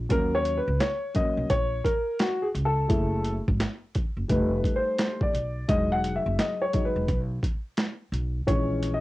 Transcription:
0.09 upright bass D#2, grand piano F#3 A#3 C#4 A#4, kick, closed hi-hat
0.35 grand piano C#5
0.45 closed hi-hat
0.57 grand piano B4
0.68 upright bass C#2
0.81 grand piano C#5, snare, closed hi-hat
1.14 grand piano F#3 A#3 C#4 D#5, kick, closed hi-hat
1.37 upright bass B1
1.50 upright bass A#1, grand piano C#5, kick, closed hi-hat
1.84 grand piano A#4, kick, closed hi-hat
2.19 grand piano F#4, snare, closed hi-hat
2.42 grand piano G#4
2.55 upright bass C#2, closed hi-hat
2.65 grand piano A4
2.88 upright bass F#1, grand piano A3 E4 G#4, kick, closed hi-hat
3.24 closed hi-hat
3.48 upright bass G#1, kick
3.60 snare, closed hi-hat
3.95 kick, closed hi-hat
4.17 upright bass F#1
4.28 upright bass F1, grand piano G3 A3 D#4 B4, kick, closed hi-hat
4.64 kick, closed hi-hat
4.76 grand piano C5
4.98 snare, closed hi-hat
5.21 grand piano D5, kick
5.33 upright bass B1, closed hi-hat
5.68 upright bass E1, grand piano F#3 G#3 D#4 D#5, kick, closed hi-hat
5.92 grand piano F#5
6.04 closed hi-hat
6.16 grand piano E5
6.26 upright bass F#1
6.39 grand piano D#5, snare, closed hi-hat
6.62 grand piano C#5
6.73 grand piano F#3 G#3 D#4, kick, closed hi-hat
6.85 grand piano B4
6.96 upright bass E1
7.08 upright bass B1, kick, closed hi-hat
7.43 kick, closed hi-hat
7.77 snare, closed hi-hat
8.12 upright bass B1, closed hi-hat
8.47 upright bass A#1, grand piano E3 G#3 C#4 C#5, kick, closed hi-hat
8.83 closed hi-hat
8.94 grand piano D#5

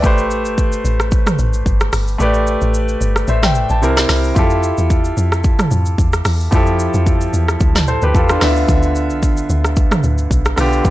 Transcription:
Already playing: grand piano D5
0.02 log drum bass A1, grand piano A3 G4 B4, kick, shaker
0.06 grand piano C5
0.18 shaker
0.31 shaker
0.45 log drum bass G1, shaker
0.58 kick, shaker
0.72 shaker
0.85 log drum bass A1, shaker
1.00 cross-stick, shaker
1.12 kick, shaker
1.27 cross-stick, mid tom, shaker
1.39 log drum bass A1, shaker
1.53 shaker
1.66 log drum bass G1, kick, shaker
1.81 cross-stick, shaker
1.93 log drum bass G1, cross-stick, open hi-hat, shaker
2.08 shaker
2.18 log drum bass A1, grand piano A3 G4 B4, shaker
2.23 grand piano D5
2.34 shaker
2.47 shaker
2.61 log drum bass A1, shaker
2.74 shaker
2.88 shaker
3.01 log drum bass G1, shaker
3.16 cross-stick, shaker
3.28 log drum bass A1, grand piano C5 E5, shaker
3.43 grand piano E5 G5, cross-stick, snare, mid tom, shaker
3.55 shaker
3.69 log drum bass A1, grand piano A5, shaker
3.82 log drum bass C2, grand piano C3 C4 E4 A#4, shaker
3.97 cross-stick, snare, shaker
4.09 log drum bass C2, cross-stick, snare, open hi-hat, shaker
4.24 shaker
4.35 log drum bass F2, grand piano E4 F4 G4, kick, shaker
4.39 grand piano A4
4.50 shaker
4.63 shaker
4.78 log drum bass E2, shaker
4.90 kick, shaker
5.05 shaker
5.17 log drum bass F2, shaker
5.32 cross-stick, shaker
5.44 kick, shaker
5.59 cross-stick, mid tom, shaker
5.71 log drum bass F2, shaker
5.86 shaker
5.98 log drum bass E2, kick, shaker
6.13 cross-stick, shaker
6.25 log drum bass E2, cross-stick, open hi-hat, shaker
6.40 shaker
6.51 log drum bass F2, grand piano F3 E4 G4, kick, shaker
6.55 grand piano A4
6.67 shaker
6.79 shaker
6.94 log drum bass F2, shaker
7.06 kick, shaker
7.21 shaker
7.33 log drum bass E2, shaker
7.48 cross-stick, shaker
7.60 log drum bass D2, kick, shaker
7.75 cross-stick, snare, mid tom, shaker
7.87 grand piano A4 C5, shaker
8.02 log drum bass D2, grand piano G4 B4, shaker
8.15 log drum bass E2, grand piano F4 A4, kick, shaker
8.29 grand piano D4 F4, cross-stick, shaker
8.40 log drum bass D2, grand piano D3 B3 E4, cross-stick, snare, open hi-hat, shaker
8.44 grand piano E5
8.49 grand piano F4
8.56 shaker
8.68 log drum bass D2, kick, shaker
8.83 shaker
8.96 shaker
9.10 log drum bass B1, shaker
9.23 kick, shaker
9.37 shaker
9.50 log drum bass D2, shaker
9.65 cross-stick, shaker
9.76 kick, shaker
9.91 cross-stick, mid tom, shaker
10.03 log drum bass D2, shaker
10.18 shaker
10.31 log drum bass B1, kick, shaker
10.45 cross-stick, shaker
10.56 log drum bass B1, grand piano D3 B3 F4, cross-stick, open hi-hat, shaker
10.60 grand piano G4
10.73 shaker
10.85 log drum bass D2, kick, shaker

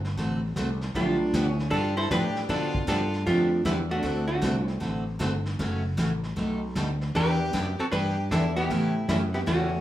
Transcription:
Already playing: fretless electric bass G1
0.04 snare
0.17 fretless electric bass A1, steel-string acoustic guitar D3 A3 C4 F#4 A4, brush sweep, kick, snare
0.56 fretless electric bass C2, steel-string acoustic guitar D3 A3 C4 F#4 A4, kick, snare, hi-hat pedal
0.81 snare
0.94 fretless electric bass B1, steel-string acoustic guitar D3 F3 B3 D4 G4, hollow-body jazz guitar A3 F4, fiddle D4, brush sweep, kick, snare
1.33 fretless electric bass D2, steel-string acoustic guitar D3 F3 B3 D4 G4, kick, snare, hi-hat pedal
1.47 fiddle C#4
1.51 hollow-body jazz guitar E4
1.59 snare
1.70 fretless electric bass G2, steel-string acoustic guitar D3 F3 B3 D4 G4, hollow-body jazz guitar D4 A4, fiddle F4, brush sweep, kick, snare
1.97 hollow-body jazz guitar E4 C5, fiddle A4
2.11 fretless electric bass A2, steel-string acoustic guitar D3 F3 B3 D4 G4, hollow-body jazz guitar D4 B4, fiddle G4, kick, snare, hi-hat pedal
2.36 snare
2.49 fretless electric bass B2, steel-string acoustic guitar D3 F3 B3 D4 G4, hollow-body jazz guitar D4 A4, fiddle F4, brush sweep, kick, snare
2.75 kick
2.87 fretless electric bass G2, steel-string acoustic guitar D3 F3 B3 D4 G4, hollow-body jazz guitar D4 A4, fiddle F4, kick, snare, hi-hat pedal
3.13 snare
3.26 fretless electric bass F2, steel-string acoustic guitar D3 F3 B3 D4 G4, hollow-body jazz guitar A3 F4, fiddle D4, brush sweep, kick, snare
3.65 fretless electric bass E2, steel-string acoustic guitar D3 F3 B3 D4 G4, hollow-body jazz guitar G3 E4, fiddle B3, kick, snare, hi-hat pedal
3.91 hollow-body jazz guitar A3 F#4, fiddle D4
4.02 fretless electric bass D2, steel-string acoustic guitar D3 A3 C4 F#4 A4, brush sweep, kick, snare
4.28 hollow-body jazz guitar A3 F#4, fiddle D4
4.42 fretless electric bass C2, steel-string acoustic guitar D3 A3 C4 F#4 A4, kick, snare, hi-hat pedal
4.66 hollow-body jazz guitar E4, snare
4.80 fretless electric bass A1, steel-string acoustic guitar D3 A3 C4 F#4 A4, brush sweep, kick, snare
5.19 fretless electric bass G1, steel-string acoustic guitar D3 A3 C4 F#4 A4, kick, snare, hi-hat pedal
5.46 snare
5.59 fretless electric bass F#1, steel-string acoustic guitar C#3 E3 A3 C#4 F#4, brush sweep, kick, snare
5.97 fretless electric bass A1, steel-string acoustic guitar C#3 E3 A3 C#4 F#4, kick, snare, hi-hat pedal
6.24 snare
6.36 fretless electric bass B1, steel-string acoustic guitar B2 G3 A3 D#4 A4, brush sweep, kick, snare
6.75 fretless electric bass D2, steel-string acoustic guitar B2 G3 A3 D#4 A4, kick, snare, hi-hat pedal
7.01 snare
7.15 fretless electric bass E2, steel-string acoustic guitar E3 B3 D4 G4, hollow-body jazz guitar D4 B4, fiddle G4, brush sweep, kick, snare
7.53 fretless electric bass F#2, steel-string acoustic guitar E3 B3 D4 G4, kick, snare, hi-hat pedal
7.79 hollow-body jazz guitar C4 A4, fiddle F#4, muted fretless electric bass stroke
7.92 fretless electric bass G2, steel-string acoustic guitar E3 B3 D4 G4, hollow-body jazz guitar D4 B4, fiddle G4, brush sweep, kick, snare
8.31 fretless electric bass E2, steel-string acoustic guitar E3 B3 D4 G4, hollow-body jazz guitar D4 A4, fiddle E4, kick, snare, hi-hat pedal
8.56 hollow-body jazz guitar B3 G4, fiddle E4, snare
8.69 fretless electric bass A2, steel-string acoustic guitar C#3 E3 A3 C#4 G4, brush sweep, kick, snare
9.08 fretless electric bass F#2, steel-string acoustic guitar C#3 E3 A3 C#4 G4, hollow-body jazz guitar G3 E4, fiddle C#4, kick, snare, hi-hat pedal
9.34 hollow-body jazz guitar B3 G4, fiddle E4, snare
9.46 fretless electric bass E2, steel-string acoustic guitar C#3 E3 A3 C#4 G4, hollow-body jazz guitar A3 F#4, fiddle C#4, brush sweep, kick, snare

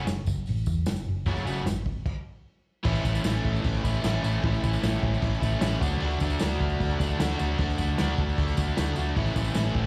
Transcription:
0.07 fingered electric bass F#1, snare, open hi-hat, tambourine
0.26 fingered electric bass F#1, kick, tambourine
0.37 tambourine
0.46 fingered electric bass A1, open hi-hat, tambourine
0.57 tambourine
0.66 fingered electric bass E2, kick, tambourine
0.86 fingered electric bass F#1, snare, open hi-hat, tambourine
0.96 tambourine
1.08 fingered electric bass F#1
1.26 fingered electric bass F#1, overdriven electric guitar F#2 C#3 F#3 A3 C#4 F#4, kick, open hi-hat, tambourine
1.37 tambourine
1.45 fingered electric bass F#1, overdriven electric guitar F#2 C#3 F#3 A3 C#4 F#4, tambourine
1.58 tambourine
1.66 fingered electric bass G#1, snare, open hi-hat, tambourine
1.76 tambourine
1.86 kick
2.06 kick, crash
2.83 fingered electric bass A1, overdriven electric guitar A2 E3 A3 C#4 E4, kick, crash
2.95 tambourine
3.04 fingered electric bass A1, overdriven electric guitar A3 C#4 E4, kick, tambourine, crash
3.15 tambourine
3.24 fingered electric bass A1, overdriven electric guitar A2 E3 A3 C#4 E4, snare, tambourine, crash
3.45 fingered electric bass A1, kick, crash
3.56 tambourine
3.64 fingered electric bass A1, kick, tambourine, crash
3.74 tambourine
3.84 fingered electric bass A1, overdriven electric guitar A3 C#4 E4, kick, tambourine, crash
3.94 tambourine
4.03 fingered electric bass A1, overdriven electric guitar E3 A3 C#4 E4, snare, tambourine, crash
4.23 fingered electric bass A1, overdriven electric guitar A3 C#4 E4, tambourine, crash
4.43 fingered electric bass A1, overdriven electric guitar A2 E3 A3 C#4 E4, kick, crash
4.54 tambourine
4.63 fingered electric bass A1, overdriven electric guitar A3 C#4 E4, kick, tambourine, crash
4.73 tambourine
4.82 fingered electric bass A1, overdriven electric guitar A2 E3 A3 C#4 E4, snare, tambourine, crash
5.03 fingered electric bass A1, kick, crash
5.12 snare, tambourine
5.22 fingered electric bass A1, kick, tambourine, crash
5.34 tambourine
5.40 fingered electric bass A1, overdriven electric guitar A3 C#4 E4, kick, tambourine, crash
5.54 tambourine
5.60 fingered electric bass A1, overdriven electric guitar E3 A3 C#4 E4, snare, tambourine, crash
5.80 fingered electric bass D2, overdriven electric guitar D3 A3 D4 F#4, kick, tambourine, crash
5.92 snare
6.00 fingered electric bass D2, overdriven electric guitar D3 A3 D4 F#4, crash
6.11 tambourine
6.20 fingered electric bass D2, overdriven electric guitar A3 D4 F#4, kick, tambourine, crash
6.30 tambourine
6.39 fingered electric bass D2, overdriven electric guitar D3 A3 D4 F#4, snare, tambourine, crash
6.60 fingered electric bass D2, kick, crash
6.69 tambourine
6.80 fingered electric bass D2, kick, tambourine, crash
6.91 tambourine
6.99 fingered electric bass D2, overdriven electric guitar A3 D4 F#4, kick, tambourine, crash
7.11 tambourine
7.18 fingered electric bass D2, overdriven electric guitar D3 A3 D4 F#4, snare, tambourine, crash
7.38 fingered electric bass D2, overdriven electric guitar A3 D4 F#4, tambourine, crash
7.50 snare
7.58 fingered electric bass D2, overdriven electric guitar D3 A3 D4 F#4, kick, tambourine, crash
7.70 tambourine
7.78 fingered electric bass D2, overdriven electric guitar A3 D4 F#4, kick, tambourine, crash
7.98 fingered electric bass D2, overdriven electric guitar D3 A3 D4 F#4, snare, tambourine, crash
8.18 fingered electric bass D2, kick, crash
8.29 tambourine
8.38 fingered electric bass D2, kick, tambourine, crash
8.48 tambourine
8.57 fingered electric bass D2, overdriven electric guitar A3 D4 F#4, kick, tambourine, crash
8.69 tambourine
8.77 fingered electric bass D2, overdriven electric guitar D3 A3 D4 F#4, snare, tambourine, crash
8.87 tambourine
8.96 fingered electric bass D2, overdriven electric guitar A3 D4 F#4, tambourine, crash
9.07 snare
9.15 fingered electric bass A1, overdriven electric guitar A2 E3 A3 C#4 E4, kick, crash
9.26 tambourine
9.36 fingered electric bass A1, overdriven electric guitar A3 C#4 E4, kick, tambourine, crash
9.44 tambourine
9.55 fingered electric bass A1, overdriven electric guitar A2 E3 A3 C#4 E4, snare, tambourine, crash
9.74 fingered electric bass A1, kick, crash

